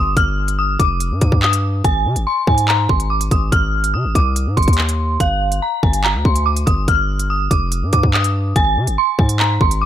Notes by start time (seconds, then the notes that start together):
Already playing: G1 D#6
0.17 G1 F6, kick, closed hi-hat
0.48 closed hi-hat
0.59 D#6
0.79 F1 D6, kick, closed hi-hat
1.00 closed hi-hat
1.11 G2
1.21 G2 D6, kick, closed hi-hat
1.32 G2, kick
1.43 D#6, clap
1.53 closed hi-hat
1.84 G#1 G#5, kick, closed hi-hat
2.05 C3
2.16 G#1, closed hi-hat
2.27 C6
2.47 G#2 G#5, kick
2.58 closed hi-hat
2.68 A#5, clap
2.89 G#1 C6, kick
3.00 closed hi-hat
3.10 D6
3.21 closed hi-hat
3.31 G#1 D#6, kick, closed hi-hat
3.52 G#1 F6, kick, closed hi-hat
3.84 closed hi-hat
3.94 C3 D#6
4.05 G#1
4.15 C2 D6, kick, closed hi-hat
4.36 closed hi-hat
4.47 G#2
4.57 G#1 C6, kick, closed hi-hat
4.62 closed hi-hat
4.68 D#2, kick, closed hi-hat
4.73 closed hi-hat
4.78 clap
4.89 closed hi-hat
5.20 G1 F5, kick, closed hi-hat
5.52 closed hi-hat
5.62 A#5
5.83 G1 G#5, kick
5.93 closed hi-hat
6.04 A#5, clap
6.15 D2
6.25 D2 C6, kick
6.36 closed hi-hat
6.46 D6
6.56 closed hi-hat
6.66 G1 D#6, kick, closed hi-hat
6.88 G1 F6, kick, closed hi-hat
7.19 closed hi-hat
7.30 D#6
7.51 F1 D6, kick, closed hi-hat
7.72 closed hi-hat
7.82 G2
7.93 G2 D6, kick, closed hi-hat
8.03 G2, kick
8.14 D#6, clap
8.24 closed hi-hat
8.56 G#1 G#5, kick, closed hi-hat
8.77 C3
8.87 G#1, closed hi-hat
8.98 C6
9.19 G#2 G#5, kick
9.29 closed hi-hat
9.40 A#5, clap
9.61 G#1 C6, kick
9.71 closed hi-hat
9.81 D6